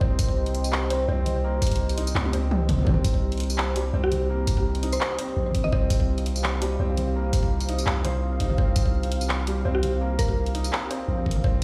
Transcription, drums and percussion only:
0.01 kick loud
0.19 kick loud
0.19 closed hi-hat medium
0.19 tambourine medium
0.29 kick medium
0.46 closed hi-hat soft
0.55 closed hi-hat medium
0.64 tambourine medium
0.73 clap loud
0.90 closed hi-hat medium
1.26 closed hi-hat medium
1.26 mid tom soft
1.62 kick loud
1.62 closed hi-hat medium
1.62 tambourine medium
1.67 closed hi-hat medium
1.71 kick medium
1.71 closed hi-hat medium
1.76 closed hi-hat soft
1.89 closed hi-hat soft
1.89 tambourine soft
1.98 closed hi-hat medium
2.07 tambourine medium
2.15 clap loud
2.15 high tom medium
2.25 high tom medium
2.33 closed hi-hat medium
2.51 mid tom medium
2.69 kick medium
2.69 closed hi-hat medium
2.69 mid tom medium
2.79 mid tom medium
2.81 mid tom soft
2.83 mid tom medium
2.85 kick loud
2.85 mid tom medium
2.87 mid tom medium
2.89 mid tom medium
2.92 mid tom medium
2.94 mid tom medium
3.04 kick loud
3.04 closed hi-hat medium
3.04 tambourine medium
3.14 kick medium
3.32 closed hi-hat soft
3.38 closed hi-hat soft
3.40 closed hi-hat medium
3.43 closed hi-hat soft
3.50 tambourine medium
3.58 clap loud
3.76 closed hi-hat medium
4.12 closed hi-hat medium
4.12 mid tom soft
4.47 kick loud
4.47 closed hi-hat medium
4.47 tambourine medium
4.57 kick medium
4.75 closed hi-hat soft
4.83 closed hi-hat medium
4.92 tambourine medium
5.01 clap loud
5.19 closed hi-hat medium
5.50 mid tom soft
5.55 kick medium
5.55 closed hi-hat medium
5.64 mid tom medium
5.72 kick loud
5.90 kick loud
5.90 closed hi-hat medium
5.90 tambourine medium
6.00 kick medium
6.18 closed hi-hat soft
6.26 closed hi-hat medium
6.36 tambourine medium
6.44 clap loud
6.62 closed hi-hat medium
6.97 closed hi-hat medium
6.97 mid tom soft
7.33 kick loud
7.33 closed hi-hat medium
7.33 tambourine medium
7.43 kick medium
7.60 closed hi-hat soft
7.60 tambourine soft
7.69 closed hi-hat medium
7.78 tambourine medium
7.87 clap loud
8.05 closed hi-hat medium
8.05 mid tom soft
8.40 kick medium
8.40 closed hi-hat medium
8.50 mid tom medium
8.58 kick loud
8.76 kick loud
8.76 closed hi-hat medium
8.76 tambourine medium
8.86 kick medium
9.03 closed hi-hat soft
9.12 closed hi-hat medium
9.21 tambourine medium
9.29 clap loud
9.47 closed hi-hat medium
9.83 closed hi-hat medium
9.83 mid tom soft
10.19 kick loud
10.19 closed hi-hat medium
10.19 tambourine medium
10.29 kick medium
10.46 closed hi-hat soft
10.55 closed hi-hat medium
10.64 tambourine medium
10.73 clap loud
10.91 closed hi-hat medium
11.26 kick medium
11.26 mid tom soft
11.31 closed hi-hat medium
11.36 mid tom medium
11.44 kick loud

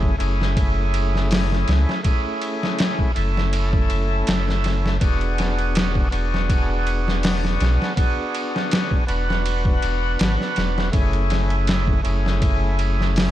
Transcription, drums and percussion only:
0.03 kick medium
0.20 ride medium
0.41 snare soft
0.57 kick loud
0.57 ride medium
0.94 ride medium
1.15 snare soft
1.31 snare loud
1.31 open hi-hat medium
1.52 snare soft
1.68 snare medium
1.68 ride medium
1.89 snare soft
2.04 kick loud
2.04 ride medium
2.42 ride medium
2.63 snare soft
2.79 snare loud
2.79 ride medium
2.99 kick medium
3.16 ride medium
3.37 snare soft
3.53 ride medium
3.73 kick loud
3.90 ride medium
4.27 snare loud
4.27 ride medium
4.49 snare soft
4.64 snare medium
4.64 ride medium
4.86 snare medium
5.01 kick loud
5.01 ride medium
5.21 ride soft
5.38 snare soft
5.38 ride medium
5.59 ride soft
5.75 snare loud
5.75 ride loud
5.95 kick medium
6.12 ride medium
6.34 snare soft
6.49 kick loud
6.49 ride medium
6.87 ride medium
7.08 snare soft
7.23 snare loud
7.23 open hi-hat medium
7.45 snare soft
7.60 snare medium
7.60 ride medium
7.82 snare soft
7.97 kick loud
7.97 ride medium
8.35 ride medium
8.56 snare medium
8.71 snare loud
8.71 ride medium
8.91 kick medium
9.08 ride medium
9.30 snare soft
9.46 ride medium
9.65 kick loud
9.82 ride medium
10.19 snare loud
10.19 ride medium
10.41 snare soft
10.56 snare medium
10.56 ride medium
10.78 snare medium
10.93 kick loud
10.93 ride medium
11.13 ride soft
11.30 snare soft
11.30 ride medium
11.50 ride soft
11.67 snare loud
11.67 ride medium
11.87 kick medium
12.05 ride medium
12.26 snare soft
12.42 kick loud
12.42 ride medium
12.79 ride medium
13.00 snare soft
13.16 snare loud
13.16 open hi-hat medium

